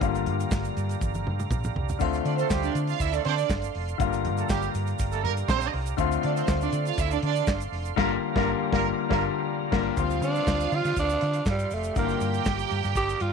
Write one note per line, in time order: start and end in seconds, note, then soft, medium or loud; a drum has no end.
0.00 0.27 G1 loud
0.00 1.96 D3 medium
0.00 1.97 G3 medium
0.00 1.97 A#3 medium
0.00 1.98 F4 medium
0.00 1.98 G4 medium
0.00 3.95 D5 medium
0.00 5.95 F5 medium
0.00 1.98 A#5 medium
0.00 kick loud
0.00 closed hi-hat medium
0.00 shaker medium
0.15 closed hi-hat soft
0.15 shaker soft
0.26 0.44 G2 loud
0.26 closed hi-hat medium
0.40 closed hi-hat soft
0.40 shaker medium
0.51 0.69 G1 medium
0.51 kick loud
0.51 snare loud
0.51 clap loud
0.51 shaker medium
0.65 closed hi-hat soft
0.65 shaker medium
0.77 0.94 G2 loud
0.77 closed hi-hat medium
0.77 shaker medium
0.89 closed hi-hat soft
0.89 shaker medium
1.01 1.28 G1 loud
1.01 kick loud
1.01 high tom medium
1.01 shaker medium
1.14 high tom medium
1.14 shaker medium
1.26 1.44 G2 loud
1.26 mid tom medium
1.40 mid tom medium
1.40 shaker medium
1.50 1.68 A#1 loud
1.50 kick loud
1.50 mid tom medium
1.50 shaker medium
1.64 mid tom medium
1.64 shaker medium
1.75 1.93 C2 medium
1.75 floor tom loud
1.89 floor tom medium
1.89 shaker medium
1.99 2.18 D2 loud
1.99 3.95 D3 medium
1.99 3.96 A3 medium
1.99 3.96 C4 medium
1.99 3.96 F4 medium
1.99 3.98 A4 medium
1.99 3.98 C6 medium
1.99 kick loud
1.99 splash medium
1.99 shaker medium
2.13 closed hi-hat medium
2.13 shaker soft
2.25 2.43 D3 loud
2.25 2.36 D4 medium
2.25 2.36 D5 medium
2.25 closed hi-hat medium
2.37 2.48 A3 medium
2.37 2.48 C4 medium
2.37 2.48 A4 medium
2.37 2.47 C5 medium
2.37 closed hi-hat soft
2.37 shaker medium
2.50 2.68 D2 loud
2.50 2.70 G3 loud
2.50 2.70 G4 loud
2.50 kick loud
2.50 snare loud
2.50 clap medium
2.50 shaker medium
2.63 2.73 D4 medium
2.63 2.72 D5 medium
2.63 closed hi-hat soft
2.63 shaker medium
2.75 2.93 D3 medium
2.75 closed hi-hat medium
2.75 shaker medium
2.87 2.98 F4 medium
2.87 2.98 F5 medium
2.87 closed hi-hat soft
2.87 shaker soft
3.00 3.18 D2 medium
3.00 3.10 E4 loud
3.00 3.11 E5 loud
3.00 kick medium
3.00 closed hi-hat medium
3.00 shaker medium
3.13 3.23 A3 medium
3.13 3.22 D4 medium
3.13 3.23 A4 medium
3.13 3.23 D5 medium
3.13 closed hi-hat soft
3.13 shaker medium
3.24 3.43 D3 loud
3.24 3.32 C4 medium
3.24 3.44 D4 loud
3.24 3.33 C5 loud
3.24 3.44 D5 loud
3.24 closed hi-hat medium
3.38 closed hi-hat medium
3.38 shaker medium
3.50 3.67 G1 loud
3.50 kick loud
3.50 snare loud
3.50 clap medium
3.50 shaker medium
3.62 closed hi-hat medium
3.62 shaker medium
3.75 3.93 F1 medium
3.75 open hi-hat medium
3.88 closed hi-hat soft
3.88 shaker medium
3.98 4.26 G1 loud
3.98 5.94 D3 medium
3.98 5.94 G3 medium
3.98 5.95 A#3 medium
3.98 5.96 F4 loud
3.98 5.97 G4 medium
3.98 5.97 D5 medium
3.98 5.97 A#5 medium
3.98 kick loud
3.98 closed hi-hat medium
3.98 shaker medium
4.13 closed hi-hat medium
4.13 shaker soft
4.25 4.42 G2 loud
4.25 closed hi-hat medium
4.37 4.47 A3 medium
4.37 4.47 A4 medium
4.37 closed hi-hat medium
4.37 shaker medium
4.48 4.67 G1 loud
4.48 4.69 G3 loud
4.48 4.69 G4 loud
4.48 kick loud
4.48 snare loud
4.48 clap medium
4.48 shaker medium
4.62 closed hi-hat soft
4.62 shaker medium
4.75 4.92 G2 loud
4.75 closed hi-hat medium
4.75 shaker medium
4.87 closed hi-hat soft
4.87 shaker soft
4.99 5.26 G1 loud
4.99 kick loud
4.99 closed hi-hat medium
4.99 shaker medium
5.12 5.21 A3 medium
5.12 5.21 A4 loud
5.12 closed hi-hat medium
5.12 shaker medium
5.23 5.42 G2 loud
5.23 5.32 A#3 medium
5.23 5.32 A#4 loud
5.23 closed hi-hat medium
5.37 closed hi-hat medium
5.37 shaker medium
5.48 5.66 A#1 loud
5.48 5.69 C4 loud
5.48 5.69 C5 loud
5.48 kick loud
5.48 snare loud
5.48 clap medium
5.48 shaker medium
5.61 closed hi-hat medium
5.61 shaker medium
5.73 5.91 C2 loud
5.73 open hi-hat medium
5.86 closed hi-hat soft
5.86 shaker medium
5.97 6.16 D2 loud
5.97 7.93 D3 medium
5.97 7.93 A3 medium
5.97 7.94 C4 medium
5.97 7.94 F4 loud
5.97 7.95 A4 medium
5.97 9.93 D5 medium
5.97 9.92 F5 medium
5.97 7.95 C6 medium
5.97 kick loud
5.97 closed hi-hat medium
5.97 shaker medium
6.12 closed hi-hat soft
6.12 shaker soft
6.23 6.42 D3 loud
6.23 6.34 D4 medium
6.23 6.34 D5 medium
6.23 closed hi-hat medium
6.36 6.46 C4 medium
6.36 6.46 C5 medium
6.36 closed hi-hat soft
6.36 shaker medium
6.48 6.66 D2 medium
6.48 kick loud
6.48 snare loud
6.48 clap medium
6.48 shaker medium
6.61 6.71 D4 medium
6.61 6.71 D5 loud
6.61 closed hi-hat soft
6.61 shaker medium
6.73 6.90 D3 loud
6.73 closed hi-hat medium
6.73 shaker medium
6.85 6.96 F4 medium
6.85 6.96 F5 medium
6.85 closed hi-hat soft
6.85 shaker medium
6.98 7.16 D2 medium
6.98 7.09 E4 loud
6.98 7.09 E5 loud
6.98 kick loud
6.98 closed hi-hat medium
6.98 shaker medium
7.11 7.22 D4 medium
7.11 7.21 D5 medium
7.11 closed hi-hat medium
7.11 shaker medium
7.22 7.41 D3 loud
7.22 7.43 D4 loud
7.22 7.44 D5 loud
7.22 closed hi-hat medium
7.35 closed hi-hat medium
7.35 shaker medium
7.47 7.65 G1 medium
7.47 kick loud
7.47 snare loud
7.47 clap medium
7.47 shaker medium
7.60 closed hi-hat medium
7.60 shaker medium
7.72 7.90 F1 medium
7.72 open hi-hat medium
7.85 closed hi-hat soft
7.85 shaker medium
7.96 8.15 G1 loud
7.96 8.14 D3 loud
7.96 8.15 G3 loud
7.96 8.10 A#3 loud
7.96 8.15 A#3 loud
7.96 8.16 F4 loud
7.96 9.95 G4 medium
7.96 8.10 A#4 loud
7.96 9.95 A#5 medium
7.96 kick loud
7.96 snare loud
7.96 crash medium
8.35 8.53 G1 loud
8.35 8.52 D3 loud
8.35 8.53 G3 loud
8.35 8.48 A#3 medium
8.35 8.53 A#3 loud
8.35 8.54 F4 loud
8.35 8.48 A#4 loud
8.35 kick loud
8.35 snare loud
8.71 8.90 G1 loud
8.71 8.89 D3 medium
8.71 8.90 G3 medium
8.71 8.85 A#3 loud
8.71 8.90 A#3 medium
8.71 8.91 F4 loud
8.71 8.86 A#4 loud
8.71 kick loud
8.71 snare loud
9.09 9.27 G1 medium
9.09 9.27 D3 loud
9.09 9.27 G3 loud
9.09 9.23 A#3 loud
9.09 9.27 A#3 medium
9.09 9.28 F4 loud
9.09 9.23 A#4 loud
9.09 kick loud
9.09 snare loud
9.71 9.89 G1 loud
9.71 9.89 D3 medium
9.71 9.89 G3 medium
9.71 9.84 A#3 medium
9.71 9.90 A#3 loud
9.71 9.90 F4 medium
9.71 9.85 A#4 medium
9.71 kick loud
9.71 snare loud
9.71 crash medium
9.96 10.21 D2 loud
9.96 11.92 F3 medium
9.96 11.92 G3 medium
9.96 11.92 C4 medium
9.96 11.68 F4 medium
9.96 11.93 F4 medium
9.96 13.33 G4 medium
9.96 11.94 D5 medium
9.96 13.33 F5 medium
9.96 11.68 F5 medium
9.96 11.95 C6 medium
9.96 kick loud
9.96 closed hi-hat medium
9.96 shaker medium
10.10 closed hi-hat soft
10.10 shaker soft
10.21 10.39 D3 loud
10.21 10.76 D4 loud
10.21 closed hi-hat medium
10.21 shaker medium
10.35 closed hi-hat soft
10.35 shaker medium
10.47 10.65 D2 loud
10.47 kick loud
10.47 snare loud
10.47 clap medium
10.47 shaker medium
10.60 closed hi-hat soft
10.60 shaker medium
10.72 10.81 D3 loud
10.72 10.98 F4 medium
10.72 closed hi-hat medium
10.84 10.93 D3 medium
10.84 snare soft
10.84 closed hi-hat soft
10.84 shaker medium
10.96 11.14 D2 loud
10.96 11.44 D4 loud
10.96 kick medium
10.96 closed hi-hat medium
10.96 shaker medium
11.10 closed hi-hat soft
11.10 shaker medium
11.21 11.40 D3 loud
11.21 closed hi-hat medium
11.33 closed hi-hat medium
11.33 shaker soft
11.46 11.64 G2 medium
11.46 11.75 G3 medium
11.46 kick loud
11.46 snare loud
11.46 clap medium
11.46 shaker medium
11.59 closed hi-hat medium
11.59 shaker medium
11.71 11.89 F1 medium
11.71 11.98 A3 medium
11.71 open hi-hat medium
11.71 shaker medium
11.84 closed hi-hat soft
11.84 shaker medium
11.96 12.14 G1 loud
11.96 13.33 D3 medium
11.96 13.33 G3 medium
11.96 13.33 A#3 medium
11.96 12.44 A#3 medium
11.96 12.04 E4 medium
11.96 13.33 G4 medium
11.96 13.33 D5 medium
11.96 13.33 G5 medium
11.96 13.33 A#5 medium
11.96 kick loud
11.96 closed hi-hat medium
11.96 shaker medium
12.04 13.33 F4 medium
12.09 closed hi-hat soft
12.09 shaker soft
12.21 12.39 G2 loud
12.21 closed hi-hat medium
12.21 shaker medium
12.34 closed hi-hat soft
12.34 shaker medium
12.45 12.63 G1 medium
12.45 kick loud
12.45 snare loud
12.45 clap medium
12.45 shaker medium
12.59 closed hi-hat soft
12.59 shaker medium
12.70 12.81 G2 medium
12.70 closed hi-hat medium
12.83 12.93 G2 loud
12.83 snare soft
12.83 closed hi-hat soft
12.83 shaker medium
12.95 13.13 G1 loud
12.95 13.23 G4 loud
12.95 kick medium
12.95 closed hi-hat medium
12.95 shaker medium
13.09 closed hi-hat soft
13.09 shaker medium
13.20 13.33 G2 loud
13.20 13.33 F4 loud
13.20 closed hi-hat medium